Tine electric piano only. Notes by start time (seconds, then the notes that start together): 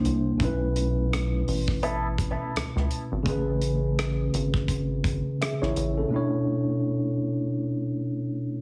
Already playing: C3 A#3 D4 E4 C5
0.38 B2 A3 C#4
0.43 E4 B4
3.23 C#3 A3 C#4
3.28 G#4 B4
5.41 G#4 E5
5.62 E4 C#5
5.98 C#4 A4
6.09 B2 A3 D4
6.14 E4 C#5